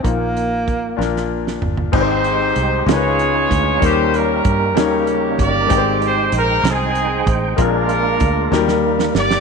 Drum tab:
CC |------------|x-----------|------------|------------|
HH |x-x-x-------|--x-x-x-x-x-|x-x-x-x-x-x-|x-x-x-x-x-x-|
SD |------oo-o--|------o-----|------o-----|------o-----|
FT |----------oo|------------|------------|------------|
BD |o---o-------|o---------o-|o---o-----o-|o---------o-|

CC |------------|
HH |x-x-x-------|
SD |------oo-ooo|
FT |------------|
BD |o---o-------|